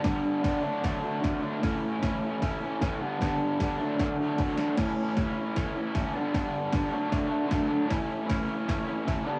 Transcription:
<<
  \new Staff \with { instrumentName = "Overdriven electric guitar" } { \time 4/4 \key a \mixolydian \tempo 4 = 153 <g, d g b d'>4 <d g b d'>8 <d fis a d'>8 <d fis a d'>8 <fis a d'>8 <d fis a d'>8 <fis a d'>8 | <a, e a cis' e'>4 <e a cis' e'>4 <e a cis' e'>8 <a cis' e'>8 <a, e a cis' e'>8 <g, d g b d'>8 | <g, d g b d'>4 <d g b d'>8 <d fis a d'>8 <d fis a d'>8 <fis a d'>8 <d fis a d'>8 <fis a d'>8 | <a, e a cis' e'>4 <e a cis' e'>4 <e a cis' e'>8 <a cis' e'>8 <a, e a cis' e'>8 <g, d g b d'>8 |
<g, d g b d'>4 <d g b d'>8 <d fis a d'>8 <d fis a d'>8 <fis a d'>8 <d fis a d'>8 <fis a d'>8 | <a, e a cis' e'>4 <e a cis' e'>4 <e a cis' e'>8 <a cis' e'>8 <a, e a cis' e'>8 <g, d g b d'>8 | }
  \new DrumStaff \with { instrumentName = "Drums" } \drummode { \time 4/4 <hho bd sn>4 <hho bd sn>4 <hho bd sn>4 <hho bd sn>4 | <hho bd sn>4 <hho bd sn>4 <hho bd sn>4 <hho bd sn>4 | <hho bd sn>4 <hho bd sn>4 <hho bd sn>4 <hho bd sn>8 sn8 | <cymc bd sn>4 <hho bd sn>4 <hho bd sn>4 <hho bd sn>4 |
<hho bd sn>4 <hho bd sn>4 <hho bd sn>4 <hho bd sn>4 | <hho bd sn>4 <hho bd sn>4 <hho bd sn>4 <hho bd sn>4 | }
>>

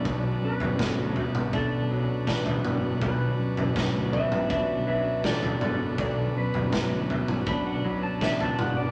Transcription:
<<
  \new Staff \with { instrumentName = "Electric slide guitar" } { \time 4/4 \key b \minor \tempo 4 = 81 d''8 b'8 a'8 fis'8 a'4 b'4 | b'8 r4 <b' e''>8 <b' e''>8 <b' e''>8 <a' d''>8 <a' d''>8 | <a' d''>8 b'4 r8 b''16 fis''16 b''16 a''16 e''16 a''16 fis''16 d''16 | }
  \new Staff \with { instrumentName = "Transistor combo organ" } { \time 4/4 \key b \minor <fis d' b'>1~ | <fis d' b'>1~ | <fis d' b'>1 | }
  \new Staff \with { instrumentName = "Clean electric guitar" } { \clef bass \time 4/4 \key b \minor <b,, b, fis d'>8 fis,8 fis8 b,8 d'8 fis8 d'8 b,8 | b,,8 fis,8 fis8 b,8 d'8 fis8 d'8 b,8 | b,,8 fis,8 fis8 b,8 d'8 fis8 d'8 b,8 | }
  \new Staff \with { instrumentName = "Harmonium" } { \clef bass \time 4/4 \key b \minor b,1 | b,1~ | b,1 | }
  \new Staff \with { instrumentName = "Fingered electric bass" } { \clef bass \time 4/4 \key b \minor b,,8 r16 fis,,8 d,16 r16 b,,8. b,,16 r16 a,,8 fis,,8 | b,,8 r16 fis,,8 d,16 r16 b,,8. b,,16 r16 a,,8 fis,,8 | b,,8 r16 fis,,8 d,16 r16 b,,8. b,,16 r16 a,,8 fis,,8 | }
  \new DrumStaff \with { instrumentName = "Drums" } \drummode { \time 4/4 <bd tomfh>8. tomfh16 <bd sn toml>8 tomfh16 toml16 <bd tomfh>4 <bd sn>16 tomfh16 toml8 | <bd tomfh>8. tomfh16 <bd sn toml>8 tomfh16 toml16 <bd tomfh>4 <bd sn>16 tomfh16 toml8 | <bd tomfh>8. tomfh16 <bd sn toml>8 tomfh16 toml16 <bd tomfh>4 <bd sn>16 tomfh16 toml8 | }
>>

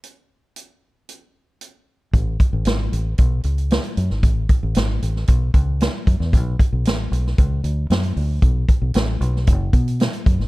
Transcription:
<<
  \new Staff \with { instrumentName = "Fingered electric bass" } { \clef bass \time 4/4 \key a \major \tempo 4 = 114 r1 | a,,8 r16 a,,16 gis,,8 a,,8 b,,8 cis,8. r16 fis,16 gis,,16 | a,,8 r16 a,,16 gis,,8 a,,8 b,,8 cis,8. r16 fis,16 e,16 | b,,8 r16 b,,16 a,,8 b,,8 cis,8 d,8 fis,8 d,8 |
b,,8 r16 b,,16 a,,8 b,,8 fis,,8 b,8. r16 fis,16 gis,,16 | }
  \new DrumStaff \with { instrumentName = "Drums" } \drummode { \time 4/4 hh4 hh4 hh4 hh4 | <hh bd>8 <hh bd>8 <hh sn>8 hh8 <hh bd>8 hh16 hh16 <hh sn>16 hh16 hh16 sn16 | <hh bd>8 <hh bd>8 <hh sn>8 hh16 sn16 <hh bd>8 <hh bd>8 <hh sn>8 <hh bd>16 sn16 | <hh bd>8 <hh bd>8 <hh sn>8 hh16 sn16 <hh bd>8 hh8 <hh sn>16 hh16 hho8 |
<hh bd>8 <hh bd>8 <hh sn>8 hh16 sn16 <hh bd>8 <hh bd>16 hh16 <hh sn>16 hh16 <hh bd>16 sn16 | }
>>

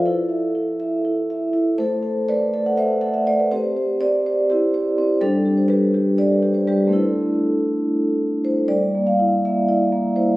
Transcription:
\new Staff \with { instrumentName = "Vibraphone" } { \time 7/8 \key a \minor \tempo 4 = 122 << { <e' a'>2 r4. | <a' c''>4 <b' d''>8. fis''16 <c'' e''>8 fis''16 e''16 d''16 b'16 | <g' c''>4 <g' d''>4 <e' g'>4. | <d' a'>8. c''16 <g' b'>4 <b' d''>8. c''16 <g' b'>8 |
<e' a'>2. c''8 | \key c \dorian d''8. f''8. e''8 d''4 c''8 | } \\ { r8 e''8 e'8 e''8 e'8 e''8 e'8 | a8 a'8 a8 a'8 a8 a'8 a8 | c'8 c''8 c'8 c''8 c'8 c''8 c'8 | g8 g'8 g8 g'8 g8 g'8 g8 |
<a c' d'>2.~ <a c' d'>8 | g8 bes8 e'8 bes8 e'8 bes8 e'8 | } >> }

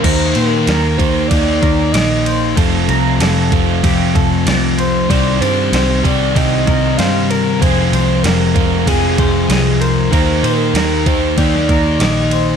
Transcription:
<<
  \new Staff \with { instrumentName = "Soft synth lead" } { \time 4/4 \key ees \major \tempo 4 = 95 c''8 bes'4 c''8 d''4 ees''8. r16 | r2. r8 c''8 | d''8 c''4 d''8 ees''4 f''8 bes'8 | c''4 bes'4 aes'4. bes'8 |
c''8 bes'4 c''8 d''4 ees''8. r16 | }
  \new Staff \with { instrumentName = "Clean electric guitar" } { \time 4/4 \key ees \major bes'8 c''8 bes'4 g'8 bes'8 d'''8 c''8 | a'8 bes''8 a'4 g'8 a'8 d''8 c''8 | c''8 d''8 c''4 g'8 bes'8 c''8 bes'8 | aes'8 c''8 bes'4 aes'8 c''8 ees''8 c''8 |
bes'8 c''8 bes'4 g'8 bes'8 d'''8 c''8 | }
  \new Staff \with { instrumentName = "Overdriven electric guitar" } { \time 4/4 \key ees \major <ees bes ees' g'>4. <ees bes ees' g'>2~ <ees bes ees' g'>8 | <f a c' f'>4. <f a c' f'>2~ <f a c' f'>8 | <c ees g c' g'>4. <c ees g c' g'>2~ <c ees g c' g'>8 | <f aes c' f'>4. <f aes c' f'>2~ <f aes c' f'>8 |
<ees bes ees' g'>4. <ees bes ees' g'>2~ <ees bes ees' g'>8 | }
  \new Staff \with { instrumentName = "Distorted electric guitar" } { \clef bass \time 4/4 \key ees \major <ees bes ees'>2 <ees bes ees'>2 | <f, c f>2 <f, c f>2 | <c g c'>2 <c g c'>2 | <f, c f>2 <f, c f>2 |
<ees bes ees'>2 <ees bes ees'>2 | }
  \new Staff \with { instrumentName = "Picked electric bass" } { \clef bass \time 4/4 \key ees \major ees,8 bes,8 ees,8 ees,8 ees,8 ees,8 bes,,4 | f,,8 c,8 f,,8 f,,8 f,,8 f,,8 c,4 | c,8 g,8 c,8 c,8 c,8 c,8 g,4 | f,,8 c,8 f,,8 f,,8 f,,8 f,,8 c,4 |
ees,8 bes,8 ees,8 ees,8 ees,8 ees,8 bes,,4 | }
  \new DrumStaff \with { instrumentName = "Drums" } \drummode { \time 4/4 <cymc bd cymr>8 cymr8 <cymr sn>8 <bd cymr>8 <bd cymr>8 <bd cymr>8 <cymr sn>8 cymr8 | <bd cymr>8 cymr8 <cymr sn>8 <bd cymr>8 <bd cymr>8 <bd cymr>8 <cymr sn>8 cymr8 | <bd cymr>8 cymr8 <cymr sn>8 <bd cymr>8 <bd cymr>8 <bd cymr>8 <cymr sn>8 cymr8 | <bd cymr>8 cymr8 <cymr sn>8 <bd cymr>8 <bd cymr>8 <bd cymr>8 <cymr sn>8 cymr8 |
<bd cymr>8 cymr8 <cymr sn>8 <bd cymr>8 <bd cymr>16 sn16 <bd cymr>8 <cymr sn>8 cymr8 | }
>>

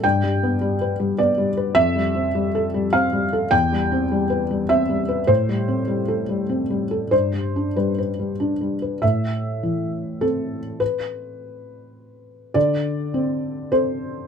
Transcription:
<<
  \new Staff \with { instrumentName = "Felt piano" } { \time 3/4 \key a \minor \tempo 4 = 102 g''2 d''8 r8 | e''2 f''4 | g''2 e''4 | c''2. |
c''4 b'4. r8 | e''2 a'4 | b'2. | d''2 c''4 | }
  \new Staff \with { instrumentName = "Felt piano" } { \clef bass \time 3/4 \key a \minor \tuplet 3/2 { g,8 g8 b8 g8 b'8 g8 b8 g8 b'8 } | \tuplet 3/2 { f,8 g8 c'8 g8 a'8 g8 c'8 g8 a'8 } | \tuplet 3/2 { e,8 g8 c'8 g8 b'8 g8 c'8 g8 b'8 } | \tuplet 3/2 { a,8 g8 c'8 g8 a'8 g8 c'8 g8 a'8 } |
\tuplet 3/2 { g,8 g8 d'8 g8 b'8 g8 d'8 g8 b'8 } | a,4 e4 c'4~ | c'2. | d4 c'4 <c' a'>4 | }
>>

